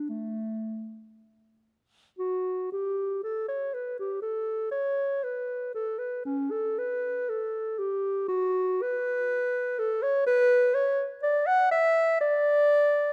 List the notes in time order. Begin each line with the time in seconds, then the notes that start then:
Already playing: D4
0.09 A3
2.19 F#4
2.72 G4
3.23 A4
3.48 C#5
3.74 B4
3.99 G4
4.22 A4
4.71 C#5
5.24 B4
5.75 A4
5.99 B4
6.25 C#4
6.51 A4
6.79 B4
7.29 A4
7.79 G4
8.28 F#4
8.82 B4
9.79 A4
10.02 C#5
10.27 B4
10.74 C#5
11.23 D5
11.47 F#5
11.71 E5
12.21 D5